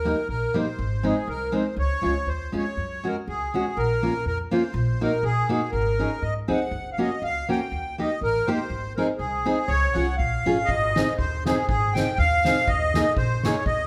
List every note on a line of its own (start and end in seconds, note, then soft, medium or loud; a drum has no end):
0.00 0.11 D#2 medium
0.00 0.28 A#4 medium
0.05 0.15 G3 soft
0.05 0.16 A#3 medium
0.05 0.16 D#4 medium
0.29 0.46 A#1 medium
0.29 0.57 A#4 medium
0.54 0.65 G3 medium
0.54 0.65 A#3 soft
0.54 0.65 D#4 medium
0.54 1.07 C5 medium
0.79 1.10 G#1 medium
1.03 1.14 G#3 medium
1.03 1.14 C4 soft
1.03 1.15 D#4 medium
1.03 1.28 G#4 medium
1.28 1.45 C2 medium
1.28 1.53 A#4 medium
1.52 1.63 G#3 medium
1.52 1.63 C4 medium
1.52 1.63 D#4 medium
1.52 1.75 C5 medium
1.77 1.94 C#2 medium
1.77 2.29 C#5 medium
2.01 2.24 C#2 medium
2.01 2.13 G#3 soft
2.01 2.13 C#4 soft
2.01 2.13 F4 medium
2.26 2.51 D#2 medium
2.26 2.52 C5 medium
2.52 2.74 F2 soft
2.52 2.63 G#3 soft
2.52 2.64 C#4 soft
2.52 2.64 F4 medium
2.57 3.07 C#5 medium
2.77 3.10 F#2 medium
3.04 3.14 G#3 medium
3.04 3.14 C#4 soft
3.04 3.14 F#4 medium
3.04 3.17 A#4 medium
3.28 3.45 C#2 medium
3.28 3.55 G#4 medium
3.54 3.64 G#3 medium
3.54 3.64 C#4 medium
3.54 3.64 F#4 medium
3.54 3.78 G#4 medium
3.77 4.08 A#1 medium
3.77 4.25 A#4 medium
4.03 4.13 A#3 medium
4.03 4.13 C#4 medium
4.03 4.13 F4 medium
4.26 4.43 F2 medium
4.26 4.38 A#4 medium
4.51 4.61 A#3 medium
4.51 4.62 C#4 medium
4.51 4.62 F4 medium
4.51 5.02 C5 medium
4.74 5.06 A#1 loud
5.01 5.11 A#3 medium
5.01 5.11 D#4 soft
5.01 5.11 F#4 medium
5.01 5.24 A#4 medium
5.23 5.41 A#1 medium
5.23 5.48 G#4 medium
5.49 5.60 A#3 medium
5.49 5.60 D#4 medium
5.49 5.60 F#4 medium
5.49 5.71 G#4 medium
5.71 6.05 G#1 medium
5.71 6.23 A#4 medium
5.99 6.09 C#4 soft
5.99 6.09 D#4 soft
5.99 6.10 G#4 medium
6.22 6.47 G#2 medium
6.22 6.34 D#5 medium
6.48 6.70 F#2 medium
6.48 6.59 C4 medium
6.48 6.59 D#4 soft
6.48 6.59 G#4 medium
6.48 6.90 F#5 medium
6.71 7.04 F#1 medium
6.92 6.99 F5 medium
6.98 7.09 A#3 medium
6.98 7.09 C#4 soft
6.98 7.09 F#4 medium
6.98 7.23 D#5 medium
7.22 7.40 C#2 medium
7.22 7.48 F5 medium
7.48 7.59 A#3 medium
7.48 7.59 C#4 medium
7.48 7.59 F#4 medium
7.48 7.96 G5 medium
7.72 8.04 D#2 medium
7.98 8.09 A#3 soft
7.98 8.09 D#4 soft
7.98 8.09 G4 medium
7.98 8.20 D#5 medium
8.21 8.39 A1 medium
8.21 8.50 A#4 medium
8.47 8.58 A#3 medium
8.47 8.58 D#4 medium
8.47 8.58 G4 medium
8.47 8.93 C5 medium
8.70 9.02 G#1 medium
8.97 9.08 C4 medium
8.97 9.08 D#4 soft
8.97 9.08 G#4 medium
8.97 9.07 A#4 medium
9.18 9.37 C2 medium
9.18 9.70 G#4 medium
9.45 9.56 C4 medium
9.45 9.56 D#4 medium
9.45 9.56 G#4 medium
9.68 9.86 C#2 medium
9.68 10.15 C#5 loud
9.94 10.16 C2 medium
9.94 10.06 C#4 soft
9.94 10.06 F4 soft
9.94 10.06 G#4 medium
9.94 10.16 F#5 medium
10.17 10.44 A#1 medium
10.17 10.70 F5 medium
10.46 10.67 G#1 medium
10.46 10.56 C#4 medium
10.46 10.57 F4 medium
10.46 10.57 G#4 medium
10.65 11.01 G#1 medium
10.65 11.13 D#5 loud
10.65 kick medium
10.65 crash medium
10.96 11.06 C4 medium
10.96 11.06 D#4 medium
10.96 11.07 G#4 medium
10.96 snare medium
11.18 11.51 D#2 medium
11.18 11.44 C5 medium
11.18 kick medium
11.45 11.57 C4 medium
11.45 11.56 D#4 medium
11.45 11.66 G#4 medium
11.45 11.57 G#4 medium
11.45 snare medium
11.67 12.01 G#1 medium
11.67 11.94 G#4 medium
11.67 kick medium
11.93 12.06 C4 soft
11.93 12.06 D#4 medium
11.93 12.06 G#4 medium
11.93 12.18 G5 medium
11.93 snare medium
12.18 12.50 D#2 medium
12.18 12.69 F5 loud
12.18 kick soft
12.45 12.55 C4 medium
12.45 12.56 D#4 medium
12.45 12.56 G#4 medium
12.45 snare medium
12.68 13.00 D#2 medium
12.68 13.14 D#5 loud
12.68 kick medium
12.94 13.05 A#3 medium
12.94 13.05 D#4 medium
12.94 13.05 G#4 medium
12.94 snare medium
13.17 13.49 A#1 medium
13.17 13.45 C5 loud
13.17 kick medium
13.43 13.54 A#3 medium
13.43 13.54 D#4 medium
13.43 13.54 G#4 medium
13.43 13.64 C#5 medium
13.43 snare medium
13.66 13.87 D#2 medium
13.66 13.87 D#5 loud
13.66 kick medium